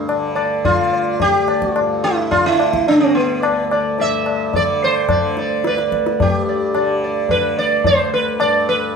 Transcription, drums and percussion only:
0.09 tabla na
0.36 tabla na
0.65 tabla tin, tabla ge
1.20 tabla tin, tabla ge
1.48 tabla na
1.62 tabla ke
1.76 tabla na
2.32 tabla tin, tabla ge
2.60 tabla na
2.74 tabla ke
2.88 tabla tin
3.43 tabla na
3.71 tabla na
3.99 tabla tin
4.26 tabla na
4.54 tabla tin, tabla ge
5.09 tabla na, tabla ge
5.37 tabla te
5.64 tabla te
5.78 tabla te
5.92 tabla ke
6.06 tabla te
6.20 tabla tin, tabla ge
6.75 tabla na
7.29 tabla tin, tabla ge
7.84 tabla tin, tabla ge
8.40 tabla na

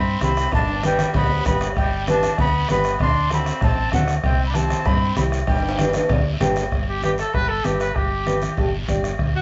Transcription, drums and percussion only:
0.21 bombo rim, cowbell, high conga, short guiro
0.37 bombo rim, short guiro
0.52 bombo low, bombo rim, cowbell, low conga, high timbale, long guiro
0.68 high timbale
0.83 bombo rim, cowbell, high conga, high timbale, short guiro
0.99 bombo rim, high conga, low timbale, short guiro
1.14 bombo low, bombo rim, cowbell, low conga, low timbale, long guiro
1.30 low timbale
1.45 bombo low, bombo rim, cowbell, high conga, low conga, low timbale, short guiro
1.61 bombo rim, low timbale, short guiro
1.76 bombo low, bombo rim, cowbell, long guiro
2.07 bombo rim, cowbell, high conga, short guiro
2.23 bombo rim, high conga, short guiro
2.38 bombo low, bombo rim, cowbell, low conga, long guiro
2.68 bombo rim, cowbell, high conga, low timbale, short guiro
2.84 bombo rim, short guiro
2.99 bombo low, bombo rim, cowbell, low conga, long guiro
3.30 bombo rim, cowbell, high conga, short guiro
3.46 bombo rim, short guiro
3.61 bombo low, bombo rim, cowbell, low conga, long guiro
3.92 bombo rim, cowbell, high conga, low conga, short guiro
4.08 bombo rim, short guiro
4.24 bombo low, bombo rim, cowbell, long guiro
4.54 bombo rim, cowbell, high conga, short guiro
4.70 bombo rim, high conga, short guiro
4.85 bombo low, bombo rim, cowbell, low conga, long guiro
5.17 bombo rim, cowbell, high conga, low timbale, short guiro
5.32 bombo rim, short guiro
5.47 bombo low, bombo rim, cowbell, high timbale, long guiro
5.59 high timbale
5.69 high timbale
5.79 bombo rim, cowbell, high conga, high timbale, short guiro
5.89 low timbale
5.93 bombo rim, high conga, short guiro
5.99 high timbale
6.09 bombo low, bombo rim, cowbell, low conga, low timbale, long guiro
6.41 bombo rim, cowbell, high conga, low conga, low timbale, short guiro
6.56 bombo rim, short guiro
6.61 low timbale
6.72 bombo low, bombo rim, long guiro
7.03 bombo rim, high conga, short guiro
7.18 bombo rim, short guiro
7.34 bombo low, bombo rim, long guiro
7.64 bombo rim, high conga, short guiro
7.80 bombo rim, short guiro
7.96 bombo low, bombo rim, long guiro
8.27 bombo rim, high conga, short guiro
8.42 bombo rim, high conga, short guiro
8.57 bombo low, bombo rim, long guiro
8.88 bombo low, bombo rim, high conga, short guiro
9.04 bombo rim, short guiro
9.19 bombo low, bombo rim, long guiro

